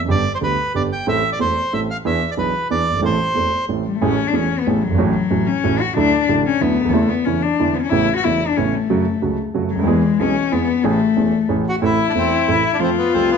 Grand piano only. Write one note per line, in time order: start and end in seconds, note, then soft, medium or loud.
0.04 0.08 F#2 soft
0.08 0.22 G1 medium
0.08 0.22 G2 medium
0.08 0.22 D3 soft
0.08 0.22 G3 soft
0.08 0.22 B3 soft
0.08 0.22 G4 medium
0.41 0.55 D2 soft
0.41 0.55 D3 soft
0.41 0.55 G3 soft
0.41 0.55 B3 soft
0.41 0.55 G4 soft
0.74 0.88 G1 soft
0.74 0.88 G2 soft
0.74 0.88 D3 soft
0.74 0.88 G3 soft
0.74 0.88 B3 soft
0.74 0.88 G4 soft
1.06 1.20 A1 medium
1.06 1.20 A2 medium
1.06 1.20 E3 soft
1.06 1.20 A3 soft
1.06 1.20 C4 soft
1.06 1.21 A4 medium
1.39 1.53 E1 soft
1.39 1.53 E2 soft
1.39 1.53 E3 soft
1.39 1.53 A3 soft
1.39 1.53 C4 soft
1.39 1.53 A4 soft
1.73 1.86 A1 soft
1.73 1.86 A2 soft
1.73 1.86 E3 soft
1.73 1.86 A3 soft
1.73 1.86 C4 soft
1.73 1.86 A4 soft
2.05 2.18 E2 medium
2.05 2.18 E3 medium
2.05 2.18 B3 soft
2.05 2.18 D4 soft
2.05 2.18 G#4 soft
2.37 2.51 B1 soft
2.37 2.51 B2 soft
2.37 2.51 E3 soft
2.37 2.51 B3 soft
2.37 2.51 D4 soft
2.37 2.51 G#4 soft
2.70 2.84 E2 soft
2.70 2.83 E3 soft
2.70 2.84 B3 soft
2.70 2.84 D4 soft
2.70 2.84 G#4 soft
2.90 2.94 F#1 soft
2.94 2.98 G1 soft
2.99 3.03 G#1 medium
2.99 3.16 A1 medium
2.99 3.16 A2 medium
2.99 3.16 E3 soft
2.99 3.16 A3 soft
2.99 3.16 C4 soft
2.99 3.16 A4 medium
3.34 3.49 E1 soft
3.34 3.48 E2 soft
3.34 3.48 E3 soft
3.34 3.49 A3 soft
3.34 3.48 C4 soft
3.34 3.49 A4 soft
3.68 3.82 A1 soft
3.68 3.82 A2 soft
3.68 3.82 E3 soft
3.68 3.82 A3 soft
3.68 3.82 C4 soft
3.68 3.82 A4 soft
4.01 4.15 A1 medium
4.01 4.15 A2 medium
4.01 4.15 E3 medium
4.01 4.15 A3 soft
4.01 4.15 C#4 soft
4.01 4.15 G#4 medium
4.33 4.47 E1 soft
4.33 4.47 E2 soft
4.33 4.47 E3 soft
4.33 4.47 A3 soft
4.33 4.47 C#4 soft
4.33 4.47 G#4 soft
4.67 4.80 A1 medium
4.67 4.80 A2 medium
4.67 4.80 E3 soft
4.67 4.80 A3 soft
4.67 4.80 C#4 soft
4.67 4.80 G#4 soft
4.87 4.91 F#1 soft
4.87 4.94 G1 medium
4.94 4.98 G#1 medium
4.98 5.12 A1 medium
4.98 5.12 A2 medium
4.98 5.12 E3 soft
4.98 5.12 A3 soft
4.98 5.12 C#4 medium
4.98 5.12 F#4 medium
5.30 5.44 A1 soft
5.30 5.44 A2 medium
5.30 5.44 E3 soft
5.30 5.44 A3 soft
5.30 5.45 C#4 soft
5.30 5.45 F#4 soft
5.64 5.77 A1 medium
5.64 5.77 A2 medium
5.64 5.77 E3 soft
5.64 5.77 A3 soft
5.64 5.77 C#4 soft
5.64 5.78 F#4 soft
5.96 6.10 D2 medium
5.96 6.10 D3 medium
5.96 6.10 F#3 medium
5.96 6.10 A3 medium
5.96 6.10 E4 medium
6.29 6.42 A1 soft
6.29 6.42 A2 soft
6.29 6.42 D3 soft
6.29 6.42 F#3 soft
6.29 6.42 A3 soft
6.29 6.42 E4 medium
6.61 6.75 D2 medium
6.61 6.75 D3 soft
6.61 6.75 F#3 soft
6.61 6.75 A3 soft
6.61 6.75 E4 soft
6.81 6.85 C#2 soft
6.85 6.89 D2 medium
6.89 6.93 D#2 medium
6.89 7.07 E2 medium
6.93 7.07 C#3 medium
6.93 7.07 E3 medium
6.93 7.07 A3 medium
6.93 7.07 E4 medium
7.26 7.40 E2 soft
7.26 7.40 C#3 soft
7.26 7.40 E3 soft
7.26 7.40 A3 soft
7.26 7.40 E4 soft
7.60 7.73 E2 soft
7.60 7.73 D3 soft
7.60 7.73 E3 medium
7.60 7.73 G#3 soft
7.60 7.73 B3 soft
7.60 7.73 E4 soft
7.91 8.05 A1 medium
7.91 8.05 A2 medium
7.91 8.05 C#3 medium
7.91 8.05 A3 soft
7.91 8.05 B3 medium
7.91 8.05 E4 medium
8.25 8.38 E1 medium
8.25 8.38 E2 soft
8.25 8.38 C#3 soft
8.25 8.38 A3 soft
8.25 8.38 B3 soft
8.25 8.38 E4 soft
8.57 8.71 A1 medium
8.57 8.71 A2 medium
8.57 8.71 C#3 soft
8.57 8.71 A3 soft
8.57 8.71 B3 soft
8.57 8.71 E4 medium
8.90 9.04 F#2 medium
8.90 9.04 C#3 medium
8.90 9.04 F#3 medium
8.90 9.04 A3 soft
8.90 9.04 F#4 medium
9.22 9.36 C#2 soft
9.22 9.36 C#3 soft
9.22 9.36 F#3 soft
9.22 9.36 A3 soft
9.22 9.36 F#4 soft
9.54 9.69 F#2 medium
9.54 9.68 C#3 soft
9.54 9.68 F#3 medium
9.54 9.69 A3 soft
9.54 9.69 F#4 medium
9.75 9.79 C#2 soft
9.75 9.83 D2 medium
9.84 9.87 D#2 medium
9.84 10.01 E2 medium
9.84 10.01 E3 medium
9.84 10.01 G#3 medium
9.84 10.01 B3 medium
9.84 10.01 G#4 medium
10.19 10.33 B1 soft
10.19 10.33 B2 medium
10.19 10.33 E3 soft
10.19 10.33 G#3 soft
10.19 10.33 B3 soft
10.19 10.34 G#4 medium
10.52 10.66 E2 medium
10.52 10.66 E3 medium
10.52 10.66 G#3 soft
10.52 10.66 B3 soft
10.52 10.66 G#4 medium
10.84 10.98 A1 medium
10.84 10.98 A2 medium
10.84 10.98 E3 medium
10.84 10.98 A3 medium
10.84 10.98 C#4 medium
10.84 10.98 G#4 medium
11.16 11.31 E1 soft
11.16 11.31 E2 soft
11.16 11.31 E3 soft
11.16 11.31 A3 soft
11.16 11.31 C#4 soft
11.16 11.31 G#4 soft
11.49 11.64 A1 medium
11.49 11.63 A2 medium
11.49 11.63 E3 soft
11.49 11.64 A3 soft
11.49 11.64 C#4 soft
11.49 11.64 G#4 soft
11.82 11.96 A1 medium
11.82 11.96 A2 medium
11.82 11.96 E3 medium
11.82 11.96 A3 soft
11.82 11.96 C4 soft
11.82 11.96 A4 medium
12.14 12.29 E1 soft
12.14 12.29 E2 soft
12.14 12.29 E3 soft
12.14 12.29 A3 soft
12.14 12.29 C4 soft
12.14 12.29 A4 soft
12.48 12.62 A1 soft
12.48 12.62 A2 soft
12.48 12.62 E3 soft
12.48 12.62 A3 soft
12.48 12.62 C4 soft
12.48 12.62 A4 soft
12.80 12.94 F2 medium
12.80 12.94 F3 medium
12.80 12.94 A3 soft
12.80 12.94 C4 soft
12.80 12.94 A4 soft
13.14 13.28 C2 soft
13.14 13.28 C3 soft
13.14 13.28 F3 soft
13.14 13.28 A3 soft
13.14 13.28 C4 soft
13.14 13.28 A4 soft